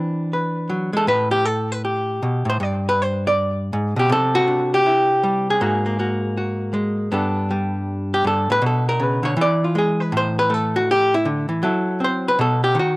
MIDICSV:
0, 0, Header, 1, 2, 480
1, 0, Start_track
1, 0, Key_signature, 1, "major"
1, 0, Tempo, 376412
1, 1389, Time_signature, 4, 2, 24, 8
1, 16535, End_track
2, 0, Start_track
2, 0, Title_t, "Hollow-body jazz guitar"
2, 0, Program_c, 0, 26
2, 0, Note_on_c, 0, 52, 70
2, 0, Note_on_c, 0, 60, 51
2, 0, Note_on_c, 0, 62, 46
2, 0, Note_on_c, 0, 71, 88
2, 283, Note_off_c, 0, 71, 0
2, 424, Note_on_c, 0, 71, 51
2, 886, Note_on_c, 0, 54, 60
2, 1184, Note_off_c, 0, 54, 0
2, 1189, Note_on_c, 0, 56, 67
2, 1227, Note_off_c, 0, 71, 0
2, 1232, Note_on_c, 0, 69, 92
2, 1363, Note_off_c, 0, 52, 0
2, 1368, Note_on_c, 0, 45, 70
2, 1370, Note_off_c, 0, 60, 0
2, 1375, Note_off_c, 0, 56, 0
2, 1376, Note_off_c, 0, 69, 0
2, 1381, Note_on_c, 0, 71, 102
2, 1393, Note_off_c, 0, 62, 0
2, 1668, Note_off_c, 0, 71, 0
2, 1673, Note_on_c, 0, 67, 87
2, 1853, Note_off_c, 0, 67, 0
2, 1853, Note_on_c, 0, 69, 94
2, 2191, Note_off_c, 0, 69, 0
2, 2191, Note_on_c, 0, 71, 92
2, 2349, Note_off_c, 0, 71, 0
2, 2354, Note_on_c, 0, 67, 53
2, 2817, Note_off_c, 0, 45, 0
2, 2837, Note_on_c, 0, 47, 64
2, 3121, Note_off_c, 0, 47, 0
2, 3127, Note_on_c, 0, 45, 70
2, 3165, Note_off_c, 0, 67, 0
2, 3182, Note_on_c, 0, 72, 83
2, 3271, Note_off_c, 0, 72, 0
2, 3303, Note_off_c, 0, 45, 0
2, 3315, Note_on_c, 0, 43, 69
2, 3351, Note_on_c, 0, 74, 103
2, 3637, Note_off_c, 0, 74, 0
2, 3682, Note_on_c, 0, 71, 89
2, 3849, Note_off_c, 0, 71, 0
2, 3849, Note_on_c, 0, 72, 100
2, 4126, Note_off_c, 0, 72, 0
2, 4171, Note_on_c, 0, 74, 94
2, 4751, Note_off_c, 0, 43, 0
2, 4756, Note_on_c, 0, 44, 67
2, 4786, Note_off_c, 0, 74, 0
2, 5049, Note_off_c, 0, 44, 0
2, 5054, Note_on_c, 0, 47, 74
2, 5093, Note_on_c, 0, 67, 92
2, 5221, Note_on_c, 0, 48, 81
2, 5228, Note_off_c, 0, 47, 0
2, 5247, Note_off_c, 0, 67, 0
2, 5258, Note_on_c, 0, 69, 106
2, 5546, Note_on_c, 0, 66, 101
2, 5709, Note_on_c, 0, 62, 43
2, 6031, Note_off_c, 0, 69, 0
2, 6045, Note_on_c, 0, 67, 102
2, 6194, Note_off_c, 0, 66, 0
2, 6201, Note_on_c, 0, 64, 52
2, 6676, Note_on_c, 0, 55, 66
2, 6992, Note_off_c, 0, 67, 0
2, 7018, Note_on_c, 0, 68, 86
2, 7130, Note_off_c, 0, 62, 0
2, 7133, Note_off_c, 0, 55, 0
2, 7135, Note_off_c, 0, 64, 0
2, 7147, Note_off_c, 0, 48, 0
2, 7153, Note_on_c, 0, 44, 84
2, 7159, Note_on_c, 0, 58, 44
2, 7167, Note_on_c, 0, 66, 47
2, 7456, Note_off_c, 0, 58, 0
2, 7471, Note_on_c, 0, 58, 48
2, 7627, Note_off_c, 0, 58, 0
2, 7633, Note_off_c, 0, 66, 0
2, 7643, Note_on_c, 0, 58, 44
2, 7648, Note_on_c, 0, 66, 43
2, 8113, Note_off_c, 0, 66, 0
2, 8128, Note_on_c, 0, 66, 48
2, 8589, Note_on_c, 0, 56, 63
2, 9051, Note_off_c, 0, 56, 0
2, 9055, Note_off_c, 0, 44, 0
2, 9061, Note_off_c, 0, 66, 0
2, 9074, Note_on_c, 0, 43, 72
2, 9077, Note_off_c, 0, 58, 0
2, 9082, Note_on_c, 0, 59, 45
2, 9088, Note_on_c, 0, 62, 47
2, 9093, Note_off_c, 0, 68, 0
2, 9100, Note_on_c, 0, 69, 50
2, 9571, Note_on_c, 0, 55, 57
2, 10356, Note_off_c, 0, 69, 0
2, 10379, Note_on_c, 0, 67, 83
2, 10497, Note_off_c, 0, 43, 0
2, 10512, Note_on_c, 0, 43, 65
2, 10533, Note_off_c, 0, 67, 0
2, 10548, Note_on_c, 0, 69, 82
2, 10822, Note_off_c, 0, 43, 0
2, 10837, Note_on_c, 0, 45, 63
2, 10839, Note_off_c, 0, 69, 0
2, 10860, Note_on_c, 0, 71, 99
2, 10983, Note_off_c, 0, 45, 0
2, 10983, Note_off_c, 0, 55, 0
2, 10988, Note_on_c, 0, 47, 77
2, 11014, Note_off_c, 0, 71, 0
2, 11049, Note_on_c, 0, 69, 64
2, 11087, Note_off_c, 0, 59, 0
2, 11328, Note_off_c, 0, 69, 0
2, 11334, Note_on_c, 0, 70, 85
2, 11471, Note_on_c, 0, 49, 57
2, 11526, Note_off_c, 0, 70, 0
2, 11526, Note_on_c, 0, 71, 70
2, 11765, Note_off_c, 0, 49, 0
2, 11770, Note_on_c, 0, 50, 64
2, 11791, Note_off_c, 0, 71, 0
2, 11796, Note_on_c, 0, 73, 85
2, 11931, Note_off_c, 0, 47, 0
2, 11939, Note_off_c, 0, 50, 0
2, 11944, Note_on_c, 0, 52, 78
2, 11962, Note_off_c, 0, 73, 0
2, 12004, Note_on_c, 0, 74, 105
2, 12271, Note_off_c, 0, 62, 0
2, 12288, Note_off_c, 0, 74, 0
2, 12297, Note_on_c, 0, 65, 48
2, 12434, Note_on_c, 0, 56, 63
2, 12452, Note_off_c, 0, 65, 0
2, 12477, Note_on_c, 0, 68, 71
2, 12755, Note_on_c, 0, 71, 84
2, 12764, Note_off_c, 0, 68, 0
2, 12894, Note_off_c, 0, 56, 0
2, 12907, Note_on_c, 0, 45, 67
2, 12921, Note_off_c, 0, 71, 0
2, 12968, Note_on_c, 0, 72, 86
2, 13243, Note_off_c, 0, 72, 0
2, 13248, Note_on_c, 0, 71, 94
2, 13387, Note_on_c, 0, 57, 62
2, 13439, Note_off_c, 0, 71, 0
2, 13439, Note_on_c, 0, 69, 81
2, 13720, Note_on_c, 0, 66, 87
2, 13724, Note_off_c, 0, 69, 0
2, 13759, Note_off_c, 0, 52, 0
2, 13883, Note_off_c, 0, 66, 0
2, 13912, Note_on_c, 0, 67, 98
2, 14200, Note_off_c, 0, 67, 0
2, 14210, Note_on_c, 0, 64, 85
2, 14350, Note_on_c, 0, 50, 60
2, 14367, Note_off_c, 0, 64, 0
2, 14643, Note_off_c, 0, 50, 0
2, 14648, Note_on_c, 0, 52, 64
2, 14807, Note_off_c, 0, 45, 0
2, 14807, Note_off_c, 0, 57, 0
2, 14826, Note_off_c, 0, 52, 0
2, 14827, Note_on_c, 0, 54, 76
2, 14832, Note_on_c, 0, 64, 47
2, 14848, Note_on_c, 0, 69, 52
2, 15306, Note_on_c, 0, 60, 55
2, 15319, Note_off_c, 0, 69, 0
2, 15358, Note_on_c, 0, 72, 85
2, 15641, Note_off_c, 0, 72, 0
2, 15664, Note_on_c, 0, 71, 92
2, 15766, Note_off_c, 0, 54, 0
2, 15766, Note_off_c, 0, 60, 0
2, 15766, Note_off_c, 0, 64, 0
2, 15797, Note_on_c, 0, 47, 77
2, 15812, Note_off_c, 0, 71, 0
2, 15825, Note_on_c, 0, 69, 82
2, 16110, Note_off_c, 0, 69, 0
2, 16115, Note_on_c, 0, 67, 83
2, 16255, Note_on_c, 0, 51, 66
2, 16271, Note_off_c, 0, 47, 0
2, 16277, Note_off_c, 0, 67, 0
2, 16314, Note_on_c, 0, 66, 77
2, 16535, Note_off_c, 0, 51, 0
2, 16535, Note_off_c, 0, 66, 0
2, 16535, End_track
0, 0, End_of_file